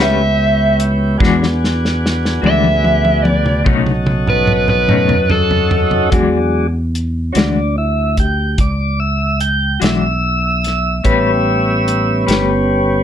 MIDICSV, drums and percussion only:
0, 0, Header, 1, 2, 480
1, 0, Start_track
1, 0, Tempo, 820793
1, 703, Time_signature, 12, 3, 24, 8
1, 7622, End_track
2, 0, Start_track
2, 0, Title_t, "Drums"
2, 467, Note_on_c, 9, 42, 61
2, 525, Note_off_c, 9, 42, 0
2, 704, Note_on_c, 9, 36, 104
2, 722, Note_on_c, 9, 38, 56
2, 763, Note_off_c, 9, 36, 0
2, 780, Note_off_c, 9, 38, 0
2, 837, Note_on_c, 9, 38, 52
2, 895, Note_off_c, 9, 38, 0
2, 962, Note_on_c, 9, 38, 58
2, 1020, Note_off_c, 9, 38, 0
2, 1083, Note_on_c, 9, 38, 51
2, 1142, Note_off_c, 9, 38, 0
2, 1204, Note_on_c, 9, 38, 64
2, 1262, Note_off_c, 9, 38, 0
2, 1318, Note_on_c, 9, 38, 53
2, 1377, Note_off_c, 9, 38, 0
2, 1426, Note_on_c, 9, 48, 72
2, 1485, Note_off_c, 9, 48, 0
2, 1545, Note_on_c, 9, 48, 57
2, 1603, Note_off_c, 9, 48, 0
2, 1663, Note_on_c, 9, 48, 70
2, 1722, Note_off_c, 9, 48, 0
2, 1783, Note_on_c, 9, 48, 60
2, 1841, Note_off_c, 9, 48, 0
2, 1901, Note_on_c, 9, 48, 77
2, 1960, Note_off_c, 9, 48, 0
2, 2022, Note_on_c, 9, 47, 62
2, 2080, Note_off_c, 9, 47, 0
2, 2142, Note_on_c, 9, 36, 97
2, 2142, Note_on_c, 9, 47, 73
2, 2200, Note_off_c, 9, 36, 0
2, 2200, Note_off_c, 9, 47, 0
2, 2260, Note_on_c, 9, 47, 68
2, 2319, Note_off_c, 9, 47, 0
2, 2377, Note_on_c, 9, 47, 83
2, 2436, Note_off_c, 9, 47, 0
2, 2499, Note_on_c, 9, 45, 73
2, 2558, Note_off_c, 9, 45, 0
2, 2616, Note_on_c, 9, 45, 78
2, 2675, Note_off_c, 9, 45, 0
2, 2737, Note_on_c, 9, 45, 73
2, 2795, Note_off_c, 9, 45, 0
2, 2858, Note_on_c, 9, 45, 85
2, 2917, Note_off_c, 9, 45, 0
2, 2977, Note_on_c, 9, 43, 75
2, 3036, Note_off_c, 9, 43, 0
2, 3097, Note_on_c, 9, 43, 84
2, 3156, Note_off_c, 9, 43, 0
2, 3221, Note_on_c, 9, 43, 77
2, 3280, Note_off_c, 9, 43, 0
2, 3339, Note_on_c, 9, 43, 99
2, 3397, Note_off_c, 9, 43, 0
2, 3457, Note_on_c, 9, 43, 82
2, 3516, Note_off_c, 9, 43, 0
2, 3579, Note_on_c, 9, 42, 65
2, 3581, Note_on_c, 9, 36, 83
2, 3638, Note_off_c, 9, 42, 0
2, 3640, Note_off_c, 9, 36, 0
2, 4065, Note_on_c, 9, 42, 51
2, 4124, Note_off_c, 9, 42, 0
2, 4299, Note_on_c, 9, 42, 74
2, 4314, Note_on_c, 9, 38, 89
2, 4357, Note_off_c, 9, 42, 0
2, 4372, Note_off_c, 9, 38, 0
2, 4780, Note_on_c, 9, 42, 52
2, 4781, Note_on_c, 9, 36, 65
2, 4839, Note_off_c, 9, 42, 0
2, 4840, Note_off_c, 9, 36, 0
2, 5018, Note_on_c, 9, 42, 74
2, 5020, Note_on_c, 9, 36, 88
2, 5077, Note_off_c, 9, 42, 0
2, 5078, Note_off_c, 9, 36, 0
2, 5500, Note_on_c, 9, 42, 52
2, 5558, Note_off_c, 9, 42, 0
2, 5741, Note_on_c, 9, 42, 70
2, 5756, Note_on_c, 9, 38, 88
2, 5800, Note_off_c, 9, 42, 0
2, 5815, Note_off_c, 9, 38, 0
2, 6225, Note_on_c, 9, 42, 50
2, 6240, Note_on_c, 9, 38, 27
2, 6283, Note_off_c, 9, 42, 0
2, 6298, Note_off_c, 9, 38, 0
2, 6459, Note_on_c, 9, 42, 65
2, 6463, Note_on_c, 9, 36, 86
2, 6518, Note_off_c, 9, 42, 0
2, 6521, Note_off_c, 9, 36, 0
2, 6946, Note_on_c, 9, 42, 50
2, 7005, Note_off_c, 9, 42, 0
2, 7183, Note_on_c, 9, 42, 69
2, 7199, Note_on_c, 9, 38, 99
2, 7242, Note_off_c, 9, 42, 0
2, 7257, Note_off_c, 9, 38, 0
2, 7622, End_track
0, 0, End_of_file